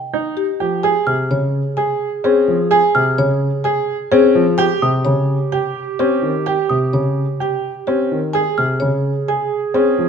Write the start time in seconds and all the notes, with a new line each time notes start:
Already playing: G5
0.13 D#4
0.37 G4
0.60 F3 G4
0.83 G#4 G#5
1.07 C3 F6
1.31 C#3 C#5
1.77 G#4 G#5
2.24 C4 C#4 G#4
2.48 F3
2.71 G#4 G#5
2.95 C3 F6
3.18 C#3 C#5
3.64 G#4 G#5
4.11 C4 C#4 G#4
4.35 F3
4.58 G4 G5
4.82 C3 D#6
5.05 C#3 C#5
5.52 G4 G5
5.99 C4 C#4 G4
6.22 D#3
6.46 G4 G5
6.70 C3 D#6
6.93 C#3 C#5
7.40 G4 G5
7.87 C4 C#4 G4
8.12 D#3
8.33 G#4 G#5
8.58 C3 F6
8.80 C#3 C#5
9.28 G#4 G#5
9.74 C4 C#4 G#4
9.98 F3